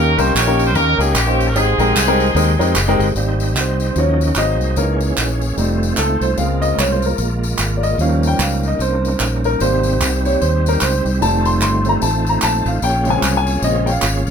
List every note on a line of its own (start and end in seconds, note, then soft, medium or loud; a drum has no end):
0.00 0.15 D#2 loud
0.00 0.55 D#3 medium
0.00 0.71 C#4 medium
0.00 0.34 G4 medium
0.00 0.18 A#4 loud
0.00 1.53 A#4 medium
0.00 1.53 D#5 medium
0.00 3.14 G5 medium
0.00 1.54 C#6 medium
0.17 0.32 C2 loud
0.17 0.33 A#3 medium
0.17 0.33 C#4 medium
0.17 0.33 D#4 medium
0.17 0.33 G4 medium
0.17 0.33 A#4 medium
0.17 0.34 C5 loud
0.17 tambourine medium
0.35 0.75 A#1 loud
0.35 0.73 G4 medium
0.35 0.73 A#4 medium
0.35 0.67 C#5 loud
0.35 clap loud
0.35 tambourine loud
0.47 0.65 A#3 medium
0.47 0.65 C#4 medium
0.47 0.65 D#4 medium
0.47 0.65 G4 medium
0.47 0.65 A#4 medium
0.59 tambourine medium
0.65 0.74 C5 loud
0.74 0.95 D#2 loud
0.74 0.89 A#3 medium
0.74 1.15 C#4 medium
0.74 0.89 C#4 medium
0.74 0.89 D#4 medium
0.74 1.14 G4 medium
0.74 0.89 G4 medium
0.74 0.98 A#4 loud
0.74 0.89 A#4 medium
0.74 tambourine medium
0.98 1.12 C#2 loud
0.98 1.14 A#3 medium
0.98 1.14 C#4 medium
0.98 1.14 D#4 medium
0.98 1.14 G4 medium
0.98 1.14 G#4 loud
0.98 1.13 A#4 medium
0.98 tambourine medium
1.15 1.54 A#1 loud
1.15 1.53 A#3 medium
1.15 1.53 C#4 medium
1.15 1.47 G4 loud
1.15 clap loud
1.15 tambourine loud
1.26 1.45 A#3 medium
1.26 1.45 C#4 medium
1.26 1.45 D#4 medium
1.26 1.45 G4 medium
1.26 1.45 C5 medium
1.41 tambourine medium
1.47 1.55 A#4 medium
1.53 1.75 G#1 loud
1.53 2.15 G#2 medium
1.53 1.70 G#3 medium
1.53 1.70 C4 medium
1.53 2.72 C4 medium
1.53 1.70 D#4 medium
1.53 2.72 D#4 medium
1.53 1.70 G4 medium
1.53 3.14 G#4 medium
1.53 2.76 G#4 loud
1.53 1.70 G#4 medium
1.53 3.14 D#5 medium
1.53 3.13 C6 medium
1.53 tambourine medium
1.78 1.93 A#1 medium
1.78 1.94 G#3 medium
1.78 1.94 C4 medium
1.78 1.94 D#4 medium
1.78 1.94 G4 medium
1.78 1.94 A#4 medium
1.78 tambourine medium
1.95 2.29 C2 medium
1.95 clap loud
1.95 tambourine loud
2.07 2.26 G#3 medium
2.07 2.26 C4 medium
2.07 2.26 D#4 medium
2.07 2.26 G4 medium
2.07 2.26 A#4 loud
2.20 tambourine soft
2.35 2.55 D#2 loud
2.35 2.50 G#3 medium
2.35 2.50 C4 medium
2.35 2.50 D#4 medium
2.35 2.50 G4 medium
2.35 2.50 A#4 medium
2.35 tambourine medium
2.59 2.73 F2 loud
2.59 2.74 G#3 medium
2.59 2.74 C4 medium
2.59 2.74 D#4 medium
2.59 2.74 G4 medium
2.59 2.74 A#4 medium
2.59 tambourine medium
2.75 2.96 F#1 medium
2.75 clap loud
2.75 tambourine loud
2.88 3.06 G#3 medium
2.88 3.06 C4 medium
2.88 3.06 D#4 medium
2.88 3.06 G4 medium
2.88 3.06 A#4 loud
2.99 3.13 G1 loud
2.99 tambourine soft
3.15 3.55 G#1 medium
3.15 3.92 G3 medium
3.15 3.93 A#3 soft
3.15 3.93 C4 medium
3.15 3.96 C4 medium
3.15 4.76 D#4 medium
3.15 3.97 G4 medium
3.15 3.97 C5 medium
3.15 3.96 D#5 medium
3.15 tambourine medium
3.40 tambourine soft
3.55 3.90 C2 medium
3.55 3.89 C5 medium
3.55 clap medium
3.55 tambourine medium
3.80 tambourine soft
3.90 3.96 C5 medium
3.96 4.30 D#2 loud
3.96 4.25 F3 soft
3.96 4.26 F#3 soft
3.96 4.26 C#4 medium
3.96 4.37 C#4 medium
3.96 4.77 F#4 medium
3.96 4.37 A#4 medium
3.96 4.39 C#5 medium
3.96 4.37 D#5 medium
3.96 tambourine medium
4.21 tambourine soft
4.35 4.60 G#1 loud
4.35 4.75 F#3 medium
4.35 4.76 A#3 soft
4.35 5.57 A#3 medium
4.35 4.76 C4 medium
4.35 5.57 G#4 medium
4.35 4.77 C5 medium
4.35 4.79 D#5 loud
4.35 clap medium
4.35 tambourine medium
4.60 4.74 C2 medium
4.60 tambourine soft
4.76 5.11 C#2 loud
4.76 5.38 E3 soft
4.76 5.58 E3 medium
4.76 5.38 A#3 medium
4.76 5.57 C#4 medium
4.76 5.38 D#4 medium
4.76 4.99 A#4 medium
4.76 5.58 C#5 medium
4.76 tambourine medium
5.00 tambourine soft
5.17 5.52 A#1 medium
5.17 clap loud
5.17 tambourine loud
5.41 tambourine soft
5.57 5.92 F1 medium
5.57 5.86 G3 soft
5.57 6.37 A3 medium
5.57 5.87 A3 soft
5.57 6.38 C4 medium
5.57 6.38 D#4 medium
5.57 5.87 D#4 medium
5.57 7.97 F4 medium
5.57 6.38 C5 medium
5.57 tambourine medium
5.83 tambourine soft
5.97 6.18 C#2 medium
5.97 6.23 A4 medium
5.97 clap medium
5.97 tambourine loud
6.21 6.35 C2 medium
6.21 6.27 C5 medium
6.21 tambourine soft
6.37 6.72 C#2 medium
6.37 6.99 C#3 medium
6.37 6.99 G#3 soft
6.37 7.99 G#3 medium
6.37 7.99 A#3 medium
6.37 6.99 C4 medium
6.37 7.99 A#4 medium
6.37 6.63 F5 medium
6.37 tambourine medium
6.62 6.79 D#5 medium
6.62 tambourine medium
6.78 7.13 C2 medium
6.78 6.92 C#5 medium
6.78 clap medium
6.78 tambourine medium
6.92 7.04 C5 medium
7.02 7.26 A#4 medium
7.02 tambourine soft
7.18 7.53 A#1 loud
7.18 tambourine medium
7.43 tambourine medium
7.58 7.93 G#1 medium
7.58 clap medium
7.58 tambourine medium
7.77 7.83 D5 medium
7.83 8.00 D#5 medium
7.83 tambourine soft
7.98 8.33 D#2 loud
7.98 8.61 F3 medium
7.98 8.61 G3 soft
7.98 9.60 G3 medium
7.98 9.60 A#3 medium
7.98 9.60 C#4 medium
7.98 8.62 C#4 medium
7.98 11.19 D#4 medium
7.98 9.60 A#4 medium
7.98 8.28 F5 medium
7.98 tambourine medium
8.23 tambourine soft
8.27 8.41 G5 medium
8.39 8.74 C#2 loud
8.39 8.68 F5 medium
8.39 clap medium
8.39 tambourine medium
8.63 tambourine soft
8.68 8.81 D#5 medium
8.79 9.14 C2 medium
8.79 9.47 C5 medium
8.79 tambourine medium
9.05 tambourine medium
9.20 9.54 A#1 medium
9.20 clap medium
9.20 tambourine medium
9.44 9.62 A#4 medium
9.44 tambourine soft
9.60 10.01 G#1 medium
9.60 10.22 C3 soft
9.60 10.22 G3 soft
9.60 11.21 G3 medium
9.60 10.22 A#3 medium
9.60 12.80 C4 medium
9.60 11.20 G4 medium
9.60 12.80 C5 medium
9.60 10.27 C5 medium
9.60 tambourine medium
9.83 tambourine medium
10.01 10.35 C2 medium
10.01 clap loud
10.01 tambourine medium
10.25 10.40 C3 soft
10.25 10.40 G3 soft
10.25 10.40 A#3 soft
10.25 10.42 C#5 medium
10.25 tambourine soft
10.41 10.76 D#2 medium
10.41 10.69 C5 medium
10.41 tambourine medium
10.66 10.82 A#4 medium
10.66 tambourine medium
10.81 11.02 C#2 medium
10.81 11.04 C5 medium
10.81 clap medium
10.81 tambourine medium
11.05 11.19 C2 medium
11.05 tambourine soft
11.21 11.62 F1 medium
11.21 11.84 D#3 medium
11.21 11.84 G3 soft
11.21 12.81 A3 medium
11.21 11.85 A3 medium
11.21 12.81 D#4 medium
11.21 14.30 F4 medium
11.21 11.47 A5 loud
11.21 tambourine medium
11.45 11.51 C6 loud
11.45 tambourine medium
11.61 11.96 G1 medium
11.61 11.90 C6 loud
11.61 clap medium
11.61 tambourine medium
11.85 12.00 D#3 soft
11.85 12.01 G3 soft
11.85 12.01 A3 soft
11.85 tambourine soft
11.89 11.94 A#5 medium
12.02 12.37 A1 loud
12.02 12.30 A5 medium
12.02 tambourine medium
12.27 12.43 A#5 medium
12.27 tambourine medium
12.42 12.63 A#1 medium
12.42 12.67 A5 loud
12.42 clap medium
12.42 tambourine loud
12.66 12.80 A1 medium
12.66 12.84 F5 medium
12.66 tambourine soft
12.82 13.17 A#1 loud
12.82 14.30 A#3 medium
12.82 14.30 C#4 medium
12.82 14.30 G#4 medium
12.82 14.30 C#5 medium
12.82 13.11 G5 medium
12.82 tambourine medium
13.05 13.31 C#3 medium
13.05 13.31 G#3 soft
13.05 13.32 C4 medium
13.05 tambourine medium
13.10 13.35 G#5 medium
13.22 13.57 C2 medium
13.22 clap medium
13.22 tambourine loud
13.37 13.64 G#5 loud
13.47 tambourine soft
13.62 13.97 A#1 medium
13.62 13.85 C#3 soft
13.62 13.85 G#3 soft
13.62 13.85 C4 medium
13.62 13.88 D#5 medium
13.62 tambourine medium
13.86 13.90 G5 medium
13.86 tambourine medium
13.91 14.30 F5 loud
14.02 14.23 G#1 loud
14.02 clap medium
14.02 tambourine medium
14.27 14.30 C2 medium
14.27 tambourine soft